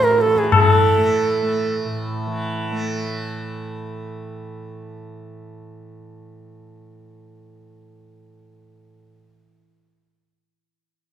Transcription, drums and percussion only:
0.02 tabla ke
0.11 tabla te
0.18 tabla te
0.27 tabla te
0.36 tabla ke
0.44 tabla te
0.52 tabla na, tabla ge

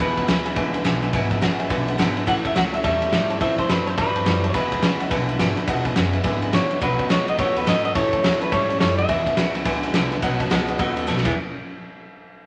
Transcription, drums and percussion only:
0.17 kick, ride
0.28 snare, ride
0.46 ride
0.56 kick, ride
0.74 ride
0.85 snare, ride
1.02 snare, ride
1.13 kick, snare, ride
1.31 kick, snare, ride
1.42 snare, ride
1.60 ride
1.70 kick, snare, ride
1.88 ride
1.99 snare, ride
2.17 ride
2.27 kick, ride
2.45 kick, snare, ride
2.56 snare, ride
2.74 ride
2.84 kick, ride
3.02 ride
3.12 snare, ride
3.30 ride
3.41 kick, ride
3.58 kick, snare, ride
3.69 snare, ride
3.87 ride
3.98 kick, ride
4.16 ride
4.26 snare, ride
4.44 ride
4.54 kick, snare, ride
4.72 kick, ride
4.82 snare, ride
5.00 ride
5.11 kick, snare, ride
5.29 ride
5.39 snare, ride
5.57 snare, ride
5.68 kick, ride
5.85 kick, ride
5.96 snare, ride
6.13 ride
6.24 kick, snare, ride
6.42 ride
6.53 snare, ride
6.71 ride
6.82 kick, snare, ride
6.99 kick, ride
7.10 snare, ride
7.28 ride
7.39 kick, ride
7.56 ride
7.67 snare, ride
7.85 ride
7.95 kick, snare, ride
8.13 kick, ride
8.24 snare, ride
8.42 ride
8.52 kick, ride
8.70 ride
8.80 snare, ride
8.98 ride
9.09 kick, ride
9.26 kick, snare, ride
9.37 snare, ride
9.55 ride
9.65 kick, ride
9.83 ride
9.94 snare, ride
10.12 snare, ride
10.22 kick, ride
10.40 kick, snare, ride
10.51 snare, ride
10.68 ride
10.79 kick, ride
10.97 ride
11.08 snare
11.17 snare
11.25 kick, crash

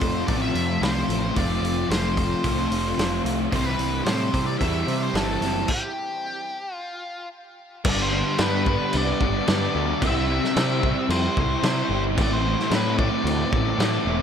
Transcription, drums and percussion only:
0.01 kick, open hi-hat
0.28 kick, open hi-hat
0.55 open hi-hat
0.83 snare, open hi-hat
1.10 open hi-hat
1.36 kick, open hi-hat
1.64 open hi-hat
1.91 snare, open hi-hat
2.17 kick, open hi-hat
2.44 kick, open hi-hat
2.72 open hi-hat
2.99 snare, open hi-hat
3.26 open hi-hat
3.52 kick, open hi-hat
3.79 open hi-hat
4.06 snare, open hi-hat
4.34 kick, open hi-hat
4.61 kick, open hi-hat
4.88 open hi-hat
5.15 snare, open hi-hat
5.42 snare, open hi-hat
5.68 kick, crash
7.85 kick, crash
8.38 snare, crash
8.66 kick
8.93 crash
9.21 kick
9.48 snare, crash
10.02 kick, crash
10.44 snare
10.56 snare, crash
10.83 kick
11.10 crash
11.37 kick
11.63 snare, crash
12.18 kick, crash
12.59 snare
12.71 snare, crash
12.99 kick
13.27 crash
13.53 kick
13.80 snare, crash

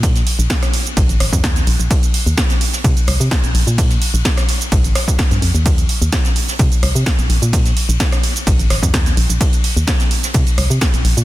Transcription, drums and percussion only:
0.03 kick, closed hi-hat, ride, shaker
0.16 snare, closed hi-hat, shaker
0.26 open hi-hat, ride
0.40 shaker
0.50 kick, snare, closed hi-hat, ride, shaker
0.62 cross-stick, snare, closed hi-hat, shaker
0.73 open hi-hat, ride
0.86 closed hi-hat, ride, shaker
0.97 kick, closed hi-hat, ride, shaker
1.09 closed hi-hat, shaker
1.20 cross-stick, snare, open hi-hat, ride
1.33 kick, shaker
1.44 kick, snare, closed hi-hat, ride, shaker
1.56 snare, closed hi-hat, shaker
1.67 open hi-hat, ride
1.80 closed hi-hat, shaker
1.91 kick, closed hi-hat, ride, shaker
2.03 closed hi-hat, shaker
2.14 open hi-hat, ride
2.27 shaker
2.37 kick, snare, closed hi-hat, ride, shaker
2.50 snare, closed hi-hat, shaker
2.61 open hi-hat
2.73 snare, closed hi-hat, shaker
2.84 kick, closed hi-hat, ride, shaker
2.97 closed hi-hat, ride, shaker
3.07 cross-stick, open hi-hat, ride
3.20 ride, shaker
3.31 kick, snare, closed hi-hat, ride, shaker
3.44 closed hi-hat, shaker
3.55 open hi-hat, ride
3.67 closed hi-hat, ride, shaker
3.78 kick, closed hi-hat, ride, shaker
3.90 snare, closed hi-hat, shaker
4.02 open hi-hat, ride
4.15 shaker
4.25 kick, snare, closed hi-hat, ride, shaker
4.37 cross-stick, snare, closed hi-hat, shaker
4.49 open hi-hat, ride
4.60 closed hi-hat, ride, shaker
4.72 kick, closed hi-hat, ride, shaker
4.84 closed hi-hat, shaker
4.95 cross-stick, snare, open hi-hat, ride
5.08 kick, shaker
5.18 kick, snare, closed hi-hat, ride, shaker
5.31 snare, closed hi-hat, shaker
5.42 open hi-hat, ride
5.55 closed hi-hat, shaker
5.66 kick, closed hi-hat, ride, shaker
5.78 closed hi-hat, shaker
5.89 open hi-hat, ride
6.02 shaker
6.12 kick, snare, closed hi-hat, ride, shaker
6.25 snare, closed hi-hat, shaker
6.36 open hi-hat
6.48 snare, closed hi-hat, shaker
6.59 kick, closed hi-hat, ride, shaker
6.72 closed hi-hat, ride, shaker
6.83 cross-stick, open hi-hat, ride
6.95 ride, shaker
7.06 kick, snare, closed hi-hat, ride, shaker
7.19 closed hi-hat, shaker
7.29 open hi-hat, ride
7.42 closed hi-hat, ride, shaker
7.53 kick, closed hi-hat, ride, shaker
7.65 snare, closed hi-hat, shaker
7.77 open hi-hat, ride
7.90 shaker
8.00 kick, snare, closed hi-hat, ride, shaker
8.12 cross-stick, snare, closed hi-hat, shaker
8.23 open hi-hat, ride
8.36 closed hi-hat, ride, shaker
8.47 kick, closed hi-hat, ride, shaker
8.59 closed hi-hat, shaker
8.70 cross-stick, snare, open hi-hat, ride
8.83 kick, shaker
8.93 kick, snare, closed hi-hat, ride, shaker
9.06 snare, closed hi-hat, shaker
9.17 open hi-hat, ride
9.30 closed hi-hat, shaker
9.41 kick, closed hi-hat, ride, shaker
9.53 closed hi-hat, shaker
9.64 open hi-hat, ride
9.77 shaker
9.87 kick, snare, closed hi-hat, ride, shaker
10.00 snare, closed hi-hat, shaker
10.11 open hi-hat
10.23 snare, closed hi-hat, shaker
10.34 kick, closed hi-hat, ride, shaker
10.46 closed hi-hat, ride, shaker
10.58 cross-stick, open hi-hat, ride
10.71 ride, shaker
10.81 kick, snare, closed hi-hat, ride, shaker
10.94 closed hi-hat, shaker
11.05 open hi-hat, ride
11.17 closed hi-hat, ride, shaker

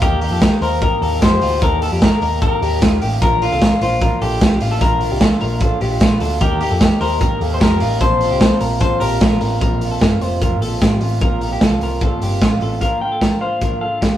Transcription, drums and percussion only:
0.02 kick, closed hi-hat
0.21 open hi-hat
0.42 kick, snare, closed hi-hat
0.62 open hi-hat
0.82 kick, closed hi-hat
1.02 open hi-hat
1.22 kick, snare, closed hi-hat
1.41 open hi-hat
1.62 kick, closed hi-hat
1.82 open hi-hat
2.02 kick, snare, closed hi-hat
2.22 open hi-hat
2.42 kick, closed hi-hat
2.62 open hi-hat
2.82 kick, snare, closed hi-hat
3.02 open hi-hat
3.22 kick, closed hi-hat
3.42 open hi-hat
3.62 kick, snare, closed hi-hat
3.81 open hi-hat
4.01 kick, closed hi-hat
4.22 open hi-hat
4.41 kick, snare, closed hi-hat
4.60 open hi-hat
4.81 kick, closed hi-hat
5.01 open hi-hat
5.21 kick, snare, closed hi-hat
5.41 open hi-hat
5.60 kick, closed hi-hat
5.81 open hi-hat
6.00 kick, snare, closed hi-hat
6.20 open hi-hat
6.41 kick, closed hi-hat
6.61 open hi-hat
6.81 kick, snare, closed hi-hat
7.01 open hi-hat
7.21 kick, closed hi-hat
7.41 open hi-hat
7.61 kick, snare, closed hi-hat
7.80 open hi-hat
8.01 kick, closed hi-hat
8.21 open hi-hat
8.41 kick, snare, closed hi-hat
8.61 open hi-hat
8.80 kick, closed hi-hat
9.01 open hi-hat
9.21 kick, snare, closed hi-hat
9.41 open hi-hat
9.61 kick, closed hi-hat
9.81 open hi-hat
10.01 kick, snare, closed hi-hat
10.21 open hi-hat
10.41 kick, closed hi-hat
10.62 open hi-hat
10.81 kick, snare, closed hi-hat
11.01 open hi-hat
11.21 kick, closed hi-hat
11.41 open hi-hat
11.61 kick, snare, closed hi-hat
11.81 open hi-hat
12.01 kick, closed hi-hat
12.22 open hi-hat
12.41 kick, snare, closed hi-hat
12.61 open hi-hat
12.81 kick, closed hi-hat
13.21 kick, snare, closed hi-hat
13.61 kick, closed hi-hat
14.02 kick, snare, closed hi-hat

